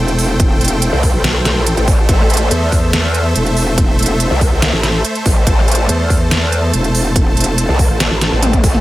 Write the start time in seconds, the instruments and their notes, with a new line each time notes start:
Already playing: wobble bass E1, supersaw synth A3 A4 C5 G5
0.08 closed hi-hat
0.19 open hi-hat
0.40 kick, closed hi-hat
0.61 wobble bass E1, closed hi-hat
0.64 closed hi-hat
0.68 closed hi-hat
0.82 closed hi-hat
0.93 wobble bass C2
1.03 kick, open hi-hat
1.14 wobble bass B1
1.24 snare, closed hi-hat
1.45 snare, closed hi-hat
1.58 wobble bass A#1
1.67 closed hi-hat
1.77 wobble bass A1, closed hi-hat
1.88 kick, open hi-hat
2.09 wobble bass A1, supersaw synth E5, kick, closed hi-hat
2.30 closed hi-hat
2.34 closed hi-hat
2.37 closed hi-hat
2.51 wobble bass E2, closed hi-hat
2.72 kick, open hi-hat
2.93 snare, closed hi-hat
3.14 closed hi-hat
3.36 wobble bass E1, closed hi-hat
3.46 closed hi-hat
3.57 open hi-hat
3.78 kick, closed hi-hat
3.99 wobble bass E1, closed hi-hat
4.02 closed hi-hat
4.06 closed hi-hat
4.20 closed hi-hat
4.31 wobble bass C2
4.41 kick, open hi-hat
4.52 wobble bass C2
4.62 snare, closed hi-hat
4.73 wobble bass A1
4.83 snare, closed hi-hat
5.05 closed hi-hat
5.15 closed hi-hat
5.26 wobble bass A1, kick, open hi-hat
5.47 wobble bass A1, supersaw synth A5, kick, closed hi-hat
5.68 closed hi-hat
5.71 closed hi-hat
5.75 closed hi-hat
5.89 wobble bass E2, closed hi-hat
6.10 kick, open hi-hat
6.31 snare, closed hi-hat
6.52 closed hi-hat
6.74 wobble bass E1, closed hi-hat
6.84 closed hi-hat
6.95 open hi-hat
7.16 kick, closed hi-hat
7.37 wobble bass E1, closed hi-hat
7.40 closed hi-hat
7.44 closed hi-hat
7.58 closed hi-hat
7.69 wobble bass C2
7.79 kick, open hi-hat
7.90 wobble bass A1
8.00 snare, closed hi-hat
8.11 wobble bass A1
8.21 snare, closed hi-hat, high tom
8.32 wobble bass A1
8.43 closed hi-hat, mid tom
8.53 kick, closed hi-hat, mid tom
8.64 kick, open hi-hat
8.74 wobble bass A1, mid tom